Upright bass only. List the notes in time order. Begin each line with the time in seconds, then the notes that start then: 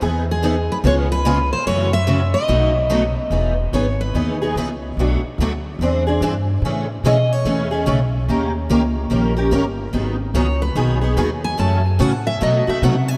0.02 E2
0.84 C#2
1.67 F#2
2.48 B1
3.30 E1
3.73 G#1
4.14 D#2
4.56 C#2
4.97 B1
5.38 D2
5.79 E2
6.21 G2
6.62 A2
7.03 B2
7.45 E2
7.87 B1
8.28 D#2
8.70 C#2
9.11 A#1
9.52 G1
9.93 G#1
10.34 C#2
10.75 B1
11.17 D#2
11.59 F#2
12.00 A2
12.41 B2
12.68 muted upright bass stroke
12.82 C3